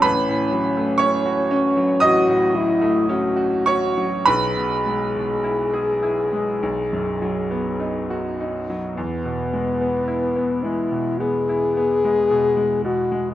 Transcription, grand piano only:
X:1
M:4/4
L:1/16
Q:1/4=54
K:E
V:1 name="Grand piano"
[Bb]4 [cc']4 [dd']6 [cc']2 | [Bb]12- [Bb]2 z2 | z16 |]
V:2 name="Grand piano" clef=bass
A,,, A,, F, A, C F C F, A,,, A,, F, A, C F C F, | B,,, B,, G, B,, E G E G, B,,, F,, F, B, D F D F, | E,, B,, G, B, E B, G, B,, B, E B, G, B,, G, B,, G, |]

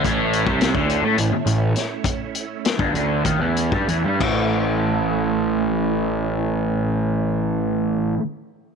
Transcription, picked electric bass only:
X:1
M:7/8
L:1/16
Q:1/4=91
K:A
V:1 name="Picked electric bass" clef=bass
A,,,3 =C,,2 D,,2 A,, A,,, z A,,,2 z2 | z4 z =G,,, D,,2 ^D,, E,,2 =G,, E,, G,, | A,,,12- A,,,2- | A,,,12- A,,,2 |]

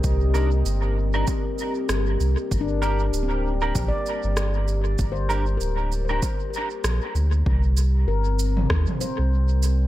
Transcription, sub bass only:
X:1
M:4/4
L:1/16
Q:"Swing 16ths" 1/4=97
K:Cdor
V:1 name="Sub bass" clef=bass
C,,4 G,,,4 z4 G,,,2 C,, z | G,,,4 D,,,4 B,,, z2 G,,,4- G,,, | G,,,4 D,,,4 z4 B,,, z D,,2 | C,,4 G,,,4 E,, z2 C,,4- C,, |]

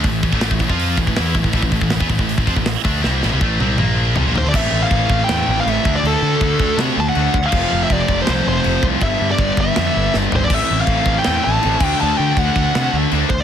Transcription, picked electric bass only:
X:1
M:4/4
L:1/16
Q:1/4=161
K:Am
V:1 name="Picked electric bass" clef=bass
A,,,2 A,,, A,,,2 A,,, A,,, F,,3 A,,, A,,, E,,2 A,,, A,,, | A,,, A,,, A,,, A,,, A,,, E,, A,,, A,,,2 A,,, F,, A,,,2 z D,,2 | C,,2 A,,, C,, A,,,2 C,,2 _B,,,4 C,, B,,, ^D,, =D,, | A,,,2 A,,,2 A,,,2 A,,,2 E,,2 A,,,2 A,,,2 D,,2 |
D,,2 D,2 D,,2 D,,2 C,2 D,,2 D,,2 D,,2 | F,,,2 F,,,2 F,,,2 F,,,2 C,,2 F,,,2 F,,,2 C,,2 | G,,,2 G,,2 G,,,2 G,,,2 F,,2 G,,,2 G,,,2 ^G,,,2 | A,,,2 A,,,2 A,,,2 A,,,2 E,,2 A,,,2 A,,,2 D,,2 |
D,,2 D,2 D,,2 D,,2 C,2 D,,2 D,,2 D,,2 |]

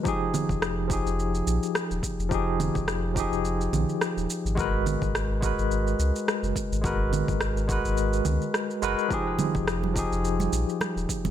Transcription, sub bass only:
X:1
M:4/4
L:1/16
Q:"Swing 16ths" 1/4=106
K:Fm
V:1 name="Sub bass" clef=bass
z3 F,,,4 F,,,3 B,,, z2 E,,, z F,,,- | F,,,3 F,,,4 F,,,3 B,,, z2 E,,, z A,,,- | A,,,3 A,,,4 A,,,3 D,, z2 _G,,, z A,,,- | A,,,3 A,,,4 A,,,3 D,, z3 _G,,, z |
z3 F,,,4 F,,,3 B,,, z2 E,,, z F,,, |]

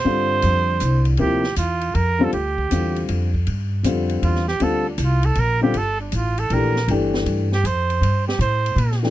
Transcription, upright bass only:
X:1
M:3/4
L:1/8
Q:"Swing" 1/4=158
K:Gdor
V:1 name="Upright bass" clef=bass
G,,2 F,,2 C,,2 | D,,2 E,,2 F,,2 | D,,2 E,,2 F,,2 | G,,2 F,,2 E,,2 |
D,,2 C,,2 B,,,2 | G,,,2 A,,,2 B,,,2 | G,,,2 G,,2 F,,2 | G,,2 A,,2 B,,2 |]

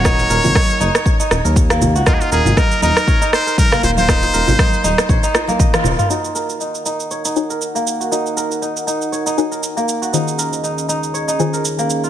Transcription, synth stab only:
X:1
M:4/4
L:1/8
Q:"Swing 16ths" 1/4=119
K:Ebdor
V:1 name="Synth stab"
z8 | z8 | z8 | [EGBdg]4- [EGBdg] [EGBda]3 |
[EGBdg]4- [EGBdg] [EGBda]3 | [E,DFAcf]4- [E,DFAcf] [E,DFAca]3 |]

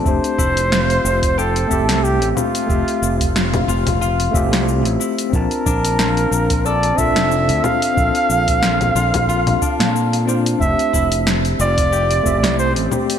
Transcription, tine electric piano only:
X:1
M:4/4
L:1/8
Q:"Swing 16ths" 1/4=91
K:F
V:1 name="Tine electric piano"
[A,CGe]4- [A,CGe] [A,CGe]3 | [A,CGe]4- [A,CGe] [A,CGe]3 | [CDFa]4- [CDFa] [CDFA]3 | [CDFA]4- [CDFA] z2 [CDFc] |
[A,CGe]4- [A,CGe] [A,CGe]3 |]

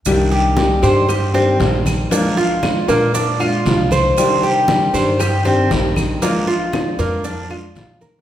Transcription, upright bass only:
X:1
M:4/4
L:1/8
Q:1/4=117
K:Cm
V:1 name="Upright bass" clef=bass
C,,3 G,,3 B,,,2 | z3 B,,3 C,,2 | z3 G,,3 B,,,2 | z3 F,,3 B,,,2 |]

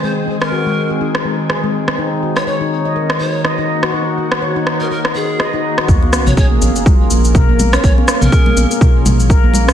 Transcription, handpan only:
X:1
M:4/4
L:1/16
Q:"Swing 16ths" 1/4=123
K:Bbm
V:1 name="Handpan"
A, z C z G A, z A E z A, z A A, z C | E z G z d E z e B z E z e E z G | E z G z d E z e B z E z e E z G | B, z D z A B, z B F z B, z B B, z D |
B, z D z A B, z B F z B, z B B, z D |]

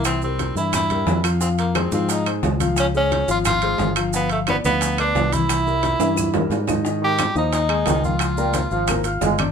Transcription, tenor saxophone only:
X:1
M:4/4
L:1/8
Q:1/4=177
K:Cphr
V:1 name="Tenor saxophone"
C C2 =E E3 z | C B, C C E z3 | D D2 F F3 z | =B, =A, B, B,2 =D2 =E- |
=E6 z2 | z G2 E E3 F- | F4- F z3 |]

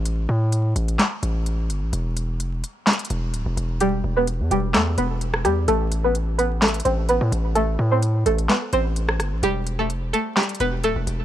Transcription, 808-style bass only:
X:1
M:4/4
L:1/16
Q:1/4=128
K:Em
V:1 name="808-style bass" clef=bass
A,,,2 A,,4 A,,,2 z2 A,,,4 G,,, A,,, | E,,,4 =F,,, E,,, z4 E,,,2 D,,, E,,, E,,,2- | E,,,2 E,,,3 E,, E,,,2 E,,2 E,,,4 E,,2 | A,,,8- A,,,2 A,,,3 A,, A,,,2- |
A,,,2 A,,4 A,,,2 z2 A,,,4 G,,, A,,, | E,,,4 =F,,, E,,, z4 E,,,2 D,,, E,,, E,,,2 |]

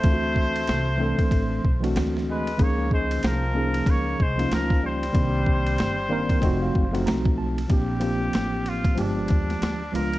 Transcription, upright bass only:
X:1
M:4/4
L:1/16
Q:"Swing 16ths" 1/4=94
K:Bb
V:1 name="Upright bass" clef=bass
D,,4 C,,3 z A,,,2 _C,,2 D,,4 | _D,,4 C,,4 D,,2 C,,2 D,,4 | C,,4 G,,,4 F,,,2 _G,,,2 _C,,4 | B,,,4 A,,,4 G,,,2 E,,2 D,,2 _D,,2 |]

